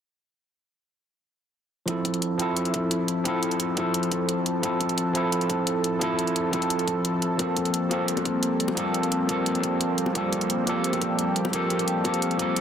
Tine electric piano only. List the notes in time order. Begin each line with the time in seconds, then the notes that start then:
1.86 F3 C4 E4
1.90 A4
2.38 F3 C4 E4
2.42 A4
3.24 F3 C4 E4
3.28 A4
3.75 F3 C4 E4
3.80 A4
4.61 F3 C4 E4
4.65 A4
5.13 F3 C4 E4
5.17 A4
5.99 F3 C4 E4
6.03 A4
6.51 F3 C4 E4
6.55 A4
7.37 F3 A#3 C4
7.42 A4
7.89 F3 A#3 C4
7.93 A4
8.75 F3 A#3 C4
8.79 A4
9.27 F3 A#3 C4
9.31 A4
10.13 F3 A#3 C4
10.18 A4
10.65 F3 A#3 C4
10.69 A4
11.51 F3 A#3 C4
11.55 A4
12.04 F3 A#3 C4 A4
12.37 F3 A#3 C4
12.42 A4